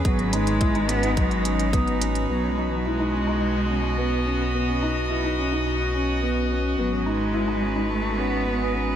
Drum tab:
HH |xxxxxxxxxxxxxxxx|----------------|----------------|----------------|
BD |o---o---o---o---|----------------|----------------|----------------|